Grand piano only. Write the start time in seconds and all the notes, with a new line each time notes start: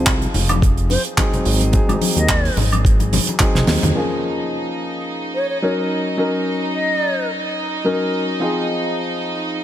Already playing: F3 C4 D#4 G#4
1.18 F#3 C4 D#4 G#4
1.73 F#3 C4 D#4 G#4
3.40 F#3 C4 D#4 G#4
3.95 F3 A#3 C#4 G#4
5.62 F#3 C#4 D#4 A#4
6.17 F#3 C#4 D#4 A#4
7.85 F#3 C#4 D#4 A#4
8.40 F3 C4 D#4 G#4